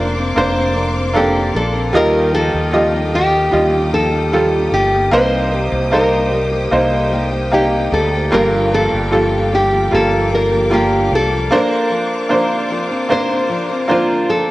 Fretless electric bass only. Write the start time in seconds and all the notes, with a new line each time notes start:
Already playing: F1
0.36 F1
1.55 A#1
1.94 D#2
2.54 D#2
3.53 D#2
4.72 G1
5.12 C2
5.72 C2
6.72 C2
7.92 D2
8.33 G1
8.93 G1
9.92 G1
11.12 C2